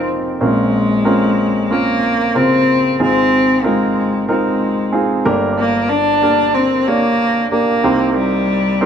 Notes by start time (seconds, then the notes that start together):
Already playing: C4 D#4 F4 G4 G#4 A#4
0.41 A#1 A#2 G#3 C4 C#4 F4 A#4
1.05 C4 C#4 F4 A#4
1.70 A#3 C4 C#4 F4 A#4
2.35 C#3 C4 F4 A#4
3.00 G#1 G#2 C4 D#4 F4 G#4
3.64 G#3 C4 D#4 F4 A#4
4.28 G#3 C4 D#4 F4 A#4
4.93 C4 D#4 F4 G#4
5.25 G1 G2 A#3 D4 G4 A#4
5.59 A#3
5.89 D4
6.23 A#3 D4 G4 A#4
6.55 C4
6.87 A#3 D4 G4 C#5
7.52 A#3 D4 G4 A#4
7.84 C2 C3 C4 D#4 G4 A#4
8.17 G3
8.81 C4 D#4 G4 A#4